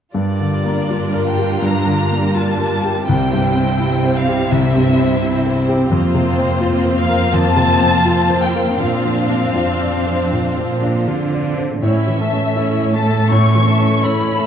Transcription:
0.14 grand piano G2, cello section G2, viola section G3 D4, violin section F4 A#4 D5
0.40 grand piano D3
0.65 grand piano A#3
0.89 grand piano F4
1.14 grand piano A#4
1.27 violin section G5
1.38 grand piano G4
1.62 grand piano G2, violin section A#5
1.87 grand piano D3
2.11 grand piano A#3
2.35 grand piano F4, violin section A5
2.60 grand piano A#4
2.84 grand piano G4
3.07 grand piano C2, cello section C3, viola section C4, violin section E4 C5 G5
3.33 grand piano G2
3.56 grand piano C4
3.80 grand piano E4
4.04 grand piano C5
4.16 violin section F5
4.28 grand piano G4
4.52 grand piano C2, violin section E5
4.75 grand piano G2
4.99 grand piano C4
5.22 grand piano E4
5.46 grand piano C5
5.68 grand piano G4
5.91 grand piano F2, cello section F2, viola section A#3, violin section F4 C5
6.14 grand piano C3
6.38 grand piano C4
6.61 grand piano F4
6.85 grand piano C5
6.98 violin section F5
7.09 grand piano A#4
7.33 grand piano F2, violin section A5
7.56 grand piano C3
7.81 grand piano C4
8.05 grand piano F4
8.30 grand piano C5
8.42 violin section G5
8.55 grand piano A#4
8.80 grand piano A#2, cello section A#2, viola section C4 D4, violin section C5 F5
9.05 grand piano F3
9.30 grand piano D4
9.55 cello section F2, grand piano F4
9.81 grand piano D5
10.06 grand piano C5
10.32 grand piano A#2
10.57 grand piano F3
10.71 cello section A#2
10.82 grand piano D4
11.08 cello section D3, grand piano F4
11.32 grand piano D5
11.58 grand piano C5
11.82 grand piano A2, cello section A2, viola section C#4 E4, violin section C#5 E5
12.07 grand piano E3
12.19 viola section A3 C#4, violin section A4 E5
12.33 grand piano C#4
12.56 viola section C#4 E4, grand piano A4, violin section C#5
12.82 grand piano C#5
12.92 viola section A3 C#4, violin section A4 E5 A5
13.06 grand piano A4
13.29 grand piano A2, viola section C#4 E4, violin section C#5 C#6
13.55 grand piano E3
13.65 viola section A3 C#4, violin section A4 E5
13.79 grand piano C#4
14.01 viola section C#4 E4, grand piano A4, violin section C#5 B5
14.27 grand piano C#5
14.36 viola section A3 C#4, violin section A4 E5

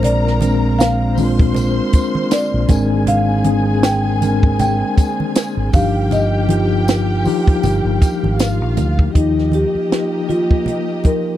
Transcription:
Already playing: fingered electric bass A#1, tonewheel organ D3 G#3 A#3 C4 F4, tine electric piano G#3 C4 D4 A#4, string section A#4 A#5
0.03 marimba D5, closed hi-hat, muted conga, low conga
0.27 snare
0.40 tine electric piano G#3 C4 D4 A#4, closed hi-hat, tambourine, muted conga, high conga
0.79 marimba F5, snare, closed hi-hat, tambourine, muted conga
1.17 tine electric piano G#3 C4 D4 F4, string section C5 C6, open hi-hat, tambourine, muted conga, high conga
1.39 kick
1.55 closed hi-hat, tambourine, low conga
1.93 kick, closed hi-hat, tambourine
2.15 high conga
2.31 marimba D5, snare, closed hi-hat, tambourine
2.54 fingered electric bass A#1
2.68 fingered electric bass G#1, tine electric piano G#3 C4 D4 A#4, tonewheel organ G#3 G#4, string section G#4 G#5, kick, closed hi-hat, tambourine, high conga, low conga
3.07 marimba F5, closed hi-hat, low conga
3.44 tine electric piano G#3 C4 D4 G#4, closed hi-hat, high conga
3.83 marimba G5, snare, closed hi-hat, tambourine
4.21 tine electric piano G#3 C4 D4 A#4, closed hi-hat, tambourine, muted conga, high conga
4.43 kick
4.59 marimba G5, closed hi-hat, tambourine, low conga
4.98 kick, closed hi-hat, tambourine
5.20 high conga
5.35 snare, closed hi-hat, tambourine
5.57 fingered electric bass G#1
5.73 fingered electric bass G1, tonewheel organ F3 G3 F4, tine electric piano F3 D4 D#4 G4, string section G4 G5, marimba F5, kick, open hi-hat, tambourine, muted conga, high conga, low conga
6.11 marimba D#5, closed hi-hat, tambourine, muted conga, low conga
6.49 tine electric piano F3 D#4 F4 G4, closed hi-hat, muted conga, high conga
6.88 snare, closed hi-hat, tambourine, muted conga
7.25 tine electric piano F3 D#4 F4 G4, open hi-hat, tambourine, muted conga, high conga
7.47 kick
7.63 fingered electric bass G1, closed hi-hat, tambourine, muted conga, low conga
7.85 fingered electric bass G1
8.01 kick, closed hi-hat, tambourine, muted conga
8.23 fingered electric bass G#1, high conga
8.39 string section F4 F5, snare, closed hi-hat, tambourine
8.61 fingered electric bass A#1
8.77 fingered electric bass D2, closed hi-hat, tambourine, muted conga, high conga, low conga
8.99 kick
9.14 fingered electric bass D#2, tine electric piano F3 D#4 F4 G4, string section A#3 G4 D#5, marimba D#4, kick, closed hi-hat
9.38 snare
9.52 marimba G4, closed hi-hat, high conga
9.75 muted fingered electric bass stroke
9.90 tine electric piano F3 A#3 D#4 F4, snare, closed hi-hat
10.29 marimba F4, closed hi-hat, high conga
10.51 kick
10.66 closed hi-hat, muted conga, low conga
11.04 tine electric piano F3 A#3 D#4 F4, marimba A#4, kick, closed hi-hat, muted conga

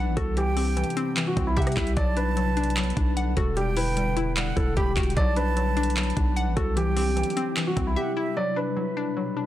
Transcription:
Already playing: ambient pad E3 B3 D4, synth pluck F#3 D4 F#5, grand piano B4
0.07 808-style bass A1
0.17 808-style bass C2, synth pluck F#4, grand piano A4, kick, closed hi-hat
0.37 ambient pad C3 G3 E4, synth pluck E3, grand piano G4, flute G5, closed hi-hat
0.57 synth pluck C4, grand piano G4, open hi-hat
0.77 synth pluck E3, closed hi-hat
0.84 closed hi-hat
0.90 closed hi-hat
0.97 synth pluck C4, closed hi-hat
1.17 synth pluck E3, clap, closed hi-hat
1.27 grand piano F#4
1.36 808-style bass C2, synth pluck C4, kick, closed hi-hat
1.47 grand piano E4
1.57 808-style bass C3, grand piano G4, synth pluck E5, flute F#5, kick, closed hi-hat
1.62 closed hi-hat
1.67 cross-stick, closed hi-hat
1.72 closed hi-hat
1.76 808-style bass C2, synth pluck E4, flute E5, kick, clap, closed hi-hat
1.87 closed hi-hat
1.97 808-style bass B1, ambient pad D3 B3 D4, synth pluck F#3, grand piano D5, flute A5, kick, closed hi-hat
2.17 synth pluck D4, grand piano B4, closed hi-hat
2.37 synth pluck F#3, closed hi-hat
2.57 synth pluck D4, closed hi-hat
2.63 closed hi-hat
2.70 closed hi-hat
2.77 synth pluck F#3, clap, closed hi-hat
2.83 closed hi-hat
2.90 closed hi-hat
2.97 808-style bass B1, synth pluck D4, kick, closed hi-hat
3.17 synth pluck F#5, closed hi-hat
3.37 808-style bass E1, synth pluck F#4, grand piano A4, kick, closed hi-hat
3.57 synth pluck G3, ambient pad G3 E4, grand piano G4, flute G5, closed hi-hat
3.77 synth pluck E4, grand piano B4, open hi-hat
3.97 synth pluck G3, closed hi-hat
4.17 synth pluck E4, closed hi-hat
4.37 synth pluck G3, flute F#5, clap, closed hi-hat
4.56 808-style bass E1, synth pluck E4, grand piano A4, kick, closed hi-hat
4.77 808-style bass E1, grand piano G4, synth pluck G4, flute B5, kick, closed hi-hat
4.96 808-style bass E1, synth pluck F#4, flute G5, kick, clap, closed hi-hat
5.03 closed hi-hat
5.10 closed hi-hat
5.16 808-style bass B1, synth pluck F#3, ambient pad F#3 B3 D4, grand piano D5, flute A5, kick, closed hi-hat
5.36 synth pluck D4, grand piano B4, closed hi-hat
5.57 synth pluck F#3, closed hi-hat
5.77 synth pluck D4, closed hi-hat
5.83 closed hi-hat
5.90 closed hi-hat
5.97 synth pluck F#3, clap, closed hi-hat
6.03 closed hi-hat
6.10 closed hi-hat
6.17 808-style bass B1, synth pluck D4, kick, closed hi-hat
6.36 synth pluck F#5, closed hi-hat
6.47 808-style bass A1
6.57 808-style bass C2, synth pluck F#4, grand piano A4, kick, closed hi-hat
6.77 ambient pad C3 G3 E4, synth pluck E3, grand piano G4, flute G5, closed hi-hat
6.96 synth pluck C4, grand piano G4, open hi-hat
7.17 synth pluck E3, closed hi-hat
7.23 closed hi-hat
7.30 closed hi-hat
7.37 synth pluck C4, closed hi-hat
7.57 synth pluck E3, clap, closed hi-hat
7.67 grand piano F#4
7.77 808-style bass C2, synth pluck C4, kick, closed hi-hat
7.87 grand piano E4
7.96 grand piano G4, synth pluck E5, flute F#5
8.17 synth pluck E4, flute E5
8.37 ambient pad B2 F#3 D4, synth pluck F#3, grand piano D5
8.56 synth pluck D4, grand piano B4
8.77 synth pluck F#3
8.97 synth pluck D4
9.17 synth pluck F#3
9.37 synth pluck D4

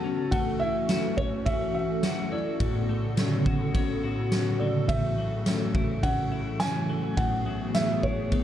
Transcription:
Already playing: analog synth pad C#3 E3 B3 F#4 A4, clean electric guitar A3 F#4 B4, felt piano A5
0.04 clean electric guitar C#4
0.31 analog synth pad E3 A3 C#4 F#4 A4, clean electric guitar A3, felt piano F#5, kick, ride
0.59 clean electric guitar E4, felt piano E5
0.89 clean electric guitar F#4, snare, ride, tambourine
1.17 felt piano C#5, clean electric guitar C#5, kick
1.46 clean electric guitar F#4, felt piano E5, kick, ride
1.74 felt piano E5
2.03 clean electric guitar F#4, snare, ride, tambourine
2.32 clean electric guitar E4, felt piano D5
2.60 analog synth pad A2 C#3 D3 B3, clean electric guitar A2, kick, ride
2.89 clean electric guitar A3
3.17 clean electric guitar C#4, snare, ride, tambourine
3.46 clean electric guitar F#4, kick
3.75 clean electric guitar C#4, kick, ride
4.03 clean electric guitar F#4
4.32 clean electric guitar C#4, snare, ride, tambourine
4.59 clean electric guitar A3, felt piano D5
4.88 clean electric guitar A2, analog synth pad E3 A3, felt piano E5, kick, ride
5.18 clean electric guitar F#3
5.46 clean electric guitar C#4, snare, ride, tambourine
5.75 clean electric guitar E4, kick
6.03 clean electric guitar C#4, felt piano F#5, kick, ride
6.32 clean electric guitar E4
6.60 clean electric guitar C#4, felt piano G#5, snare, ride, tambourine
6.89 clean electric guitar F#3
7.16 analog synth pad A2 B3 F#4 G#4, clean electric guitar A2, felt piano F#5, kick, ride
7.46 clean electric guitar F#3
7.74 clean electric guitar B3, felt piano E5, snare, ride, tambourine
8.03 clean electric guitar E4, felt piano C#5, kick
8.32 clean electric guitar B3, kick, ride

